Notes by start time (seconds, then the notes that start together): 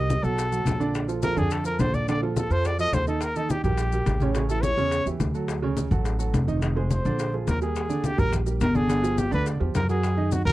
Already playing: C2 G3 G4 A#4 D#5
0.10 high bongo, high conga, maracas
0.23 B1 F#3 F#4 A4, maracas
0.38 high bongo, high conga, maracas
0.51 F#3 F#4 A4, high bongo, high conga, maracas
0.65 A#1, high bongo, low bongo, high conga, maracas
0.80 D3 D4 D5, high bongo, high conga, maracas
0.95 high bongo, high conga, maracas
1.08 F3 F4 A4, high conga, maracas
1.22 F3 F4 A4 A#4, high bongo, high conga, maracas
1.36 F2 D3 D4 G#4 D5, high conga, low conga, maracas
1.51 A4, high bongo, high conga, maracas
1.64 F3 F4 A4 A#4, high conga, maracas
1.79 A#1 D3 D4 C5 D5, high bongo, low bongo, high conga, maracas
1.94 D5, high conga, maracas
2.08 D3 D4 D5, high bongo, high conga, maracas
2.22 F3 F4 A4, high bongo, high conga
2.36 A4, high bongo, high conga, maracas
2.50 F2 F3 F4 A4 C5, high conga, maracas
2.64 D5, high bongo, high conga, maracas
2.79 F3 F4 A4 D#5, high bongo, high conga, maracas
2.92 D#2 C5, high bongo, low bongo, high conga, maracas
3.07 D#3 D#4 A4 D#5, high bongo, high conga, maracas
3.21 A#4, high bongo, high conga, maracas
3.36 D#3 D#4 A4 D#5, high conga, maracas
3.49 G4, high bongo, high conga, maracas
3.64 A#1 G3 G4 A#4, high conga, low conga, maracas
3.78 high bongo, high conga, maracas
3.92 G3 G4 A#4, high conga, maracas
4.06 A1, high bongo, low bongo, high conga, maracas
4.20 C#3 C#4 C#5, high conga, maracas
4.35 C#3 C#4 C#5, high bongo, maracas
4.49 E3 E4 G4 A4, high bongo, high conga, maracas
4.63 C#5, high bongo, high conga, maracas
4.77 E2 C#3 C#4 C#5, high conga, maracas
4.91 high bongo, high conga, maracas
5.06 E2 E3 E4 G4, high bongo, high conga, maracas
5.20 D2, high bongo, low bongo, high conga, maracas
5.34 F#3 F#4 A4, high bongo, high conga, maracas
5.48 high bongo, high conga, maracas
5.62 C#3 C#4 C#5, high conga
5.77 high bongo, high conga, maracas
5.91 A1 F#3 F#4 A4, high conga, low conga, maracas
6.05 high bongo, high conga, maracas
6.18 F#3 F#4 A4, high conga, maracas
6.33 F1, high bongo, low bongo, high conga, maracas
6.47 D#3 D#4 D#5, high conga, maracas
6.62 D#3 D#4 D#5, high bongo, high conga, maracas
6.76 G#3 G#4 C5, high bongo, high conga
6.91 C5, high bongo, high conga, maracas
7.05 A#1 D3 D4 D5, high conga, maracas
7.19 high bongo, high conga, maracas
7.33 F3 F4 G#4, high bongo, high conga
7.47 D#2 A#4, high bongo, low bongo, high conga, maracas
7.61 G3 G4 G#4 A#4, high bongo, high conga, maracas
7.75 high bongo, high conga, maracas
7.89 D3 D4 D5, high conga, maracas
8.04 G4, high bongo, high conga, maracas
8.18 A#1 G3 G4 A#4, high conga, low conga, maracas
8.32 high bongo, high conga, low conga, maracas
8.46 G3 G4 A#4, high conga, maracas
8.61 G1 A#4, high bongo, low bongo, high conga, maracas
8.74 D3 D4 G#4 D5, high conga, maracas
8.88 D3 D4 D5, high bongo, high conga, maracas
9.02 F3 F4 G4, high bongo, high conga, maracas
9.18 G4, high bongo, high conga, maracas
9.31 D2 D3 D4 B4 D5, high conga, maracas
9.46 high bongo, high conga, maracas
9.60 E2 F3 F4 G4, high bongo, high conga
9.75 F#2 A#4, high bongo, low bongo, high conga, maracas
9.89 F#3 F#4 G#4 A#4, high bongo, high conga, maracas
10.03 high bongo, high conga, maracas
10.17 D#3 D#4 D#5, high conga
10.32 F#4, high bongo, high conga, maracas
10.45 C#2 F#3 F#4 A#4, high conga, low conga, maracas